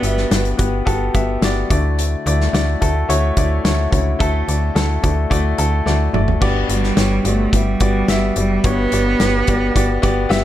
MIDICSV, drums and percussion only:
0, 0, Header, 1, 2, 480
1, 0, Start_track
1, 0, Tempo, 555556
1, 1711, Time_signature, 4, 2, 24, 8
1, 9021, End_track
2, 0, Start_track
2, 0, Title_t, "Drums"
2, 29, Note_on_c, 9, 42, 68
2, 115, Note_off_c, 9, 42, 0
2, 149, Note_on_c, 9, 38, 33
2, 235, Note_off_c, 9, 38, 0
2, 271, Note_on_c, 9, 42, 72
2, 272, Note_on_c, 9, 38, 80
2, 357, Note_off_c, 9, 42, 0
2, 358, Note_off_c, 9, 38, 0
2, 389, Note_on_c, 9, 42, 38
2, 476, Note_off_c, 9, 42, 0
2, 508, Note_on_c, 9, 42, 69
2, 512, Note_on_c, 9, 36, 81
2, 594, Note_off_c, 9, 42, 0
2, 598, Note_off_c, 9, 36, 0
2, 750, Note_on_c, 9, 36, 76
2, 754, Note_on_c, 9, 42, 70
2, 836, Note_off_c, 9, 36, 0
2, 840, Note_off_c, 9, 42, 0
2, 989, Note_on_c, 9, 42, 61
2, 990, Note_on_c, 9, 36, 78
2, 1075, Note_off_c, 9, 42, 0
2, 1077, Note_off_c, 9, 36, 0
2, 1230, Note_on_c, 9, 38, 100
2, 1230, Note_on_c, 9, 42, 67
2, 1316, Note_off_c, 9, 38, 0
2, 1317, Note_off_c, 9, 42, 0
2, 1473, Note_on_c, 9, 36, 85
2, 1474, Note_on_c, 9, 42, 68
2, 1559, Note_off_c, 9, 36, 0
2, 1561, Note_off_c, 9, 42, 0
2, 1716, Note_on_c, 9, 42, 78
2, 1803, Note_off_c, 9, 42, 0
2, 1957, Note_on_c, 9, 42, 62
2, 2044, Note_off_c, 9, 42, 0
2, 2078, Note_on_c, 9, 38, 33
2, 2165, Note_off_c, 9, 38, 0
2, 2198, Note_on_c, 9, 42, 67
2, 2200, Note_on_c, 9, 38, 91
2, 2285, Note_off_c, 9, 42, 0
2, 2286, Note_off_c, 9, 38, 0
2, 2435, Note_on_c, 9, 42, 68
2, 2436, Note_on_c, 9, 36, 72
2, 2521, Note_off_c, 9, 42, 0
2, 2523, Note_off_c, 9, 36, 0
2, 2677, Note_on_c, 9, 42, 76
2, 2763, Note_off_c, 9, 42, 0
2, 2910, Note_on_c, 9, 42, 65
2, 2912, Note_on_c, 9, 36, 82
2, 2997, Note_off_c, 9, 42, 0
2, 2998, Note_off_c, 9, 36, 0
2, 3153, Note_on_c, 9, 38, 105
2, 3153, Note_on_c, 9, 42, 73
2, 3239, Note_off_c, 9, 38, 0
2, 3240, Note_off_c, 9, 42, 0
2, 3391, Note_on_c, 9, 36, 75
2, 3394, Note_on_c, 9, 42, 74
2, 3478, Note_off_c, 9, 36, 0
2, 3481, Note_off_c, 9, 42, 0
2, 3632, Note_on_c, 9, 36, 106
2, 3632, Note_on_c, 9, 42, 67
2, 3718, Note_off_c, 9, 36, 0
2, 3719, Note_off_c, 9, 42, 0
2, 3875, Note_on_c, 9, 42, 66
2, 3962, Note_off_c, 9, 42, 0
2, 4113, Note_on_c, 9, 42, 60
2, 4114, Note_on_c, 9, 38, 87
2, 4199, Note_off_c, 9, 42, 0
2, 4201, Note_off_c, 9, 38, 0
2, 4351, Note_on_c, 9, 42, 69
2, 4352, Note_on_c, 9, 36, 84
2, 4438, Note_off_c, 9, 36, 0
2, 4438, Note_off_c, 9, 42, 0
2, 4588, Note_on_c, 9, 36, 72
2, 4593, Note_on_c, 9, 42, 70
2, 4674, Note_off_c, 9, 36, 0
2, 4680, Note_off_c, 9, 42, 0
2, 4825, Note_on_c, 9, 42, 64
2, 4911, Note_off_c, 9, 42, 0
2, 5066, Note_on_c, 9, 38, 42
2, 5152, Note_off_c, 9, 38, 0
2, 5307, Note_on_c, 9, 45, 70
2, 5393, Note_off_c, 9, 45, 0
2, 5426, Note_on_c, 9, 43, 69
2, 5512, Note_off_c, 9, 43, 0
2, 5544, Note_on_c, 9, 36, 97
2, 5544, Note_on_c, 9, 49, 70
2, 5630, Note_off_c, 9, 36, 0
2, 5630, Note_off_c, 9, 49, 0
2, 5784, Note_on_c, 9, 42, 63
2, 5871, Note_off_c, 9, 42, 0
2, 5905, Note_on_c, 9, 38, 32
2, 5991, Note_off_c, 9, 38, 0
2, 6021, Note_on_c, 9, 42, 65
2, 6022, Note_on_c, 9, 38, 89
2, 6107, Note_off_c, 9, 42, 0
2, 6108, Note_off_c, 9, 38, 0
2, 6264, Note_on_c, 9, 42, 70
2, 6350, Note_off_c, 9, 42, 0
2, 6505, Note_on_c, 9, 36, 70
2, 6506, Note_on_c, 9, 42, 72
2, 6591, Note_off_c, 9, 36, 0
2, 6592, Note_off_c, 9, 42, 0
2, 6741, Note_on_c, 9, 42, 60
2, 6745, Note_on_c, 9, 36, 74
2, 6827, Note_off_c, 9, 42, 0
2, 6831, Note_off_c, 9, 36, 0
2, 6984, Note_on_c, 9, 38, 93
2, 6985, Note_on_c, 9, 42, 79
2, 7071, Note_off_c, 9, 38, 0
2, 7071, Note_off_c, 9, 42, 0
2, 7222, Note_on_c, 9, 42, 64
2, 7309, Note_off_c, 9, 42, 0
2, 7464, Note_on_c, 9, 42, 76
2, 7467, Note_on_c, 9, 36, 99
2, 7550, Note_off_c, 9, 42, 0
2, 7553, Note_off_c, 9, 36, 0
2, 7706, Note_on_c, 9, 42, 73
2, 7792, Note_off_c, 9, 42, 0
2, 7947, Note_on_c, 9, 42, 66
2, 7949, Note_on_c, 9, 38, 84
2, 8034, Note_off_c, 9, 42, 0
2, 8035, Note_off_c, 9, 38, 0
2, 8185, Note_on_c, 9, 42, 78
2, 8191, Note_on_c, 9, 36, 88
2, 8271, Note_off_c, 9, 42, 0
2, 8278, Note_off_c, 9, 36, 0
2, 8430, Note_on_c, 9, 36, 74
2, 8433, Note_on_c, 9, 42, 82
2, 8516, Note_off_c, 9, 36, 0
2, 8519, Note_off_c, 9, 42, 0
2, 8667, Note_on_c, 9, 42, 74
2, 8670, Note_on_c, 9, 36, 76
2, 8753, Note_off_c, 9, 42, 0
2, 8756, Note_off_c, 9, 36, 0
2, 8911, Note_on_c, 9, 38, 91
2, 8911, Note_on_c, 9, 42, 67
2, 8997, Note_off_c, 9, 38, 0
2, 8998, Note_off_c, 9, 42, 0
2, 9021, End_track
0, 0, End_of_file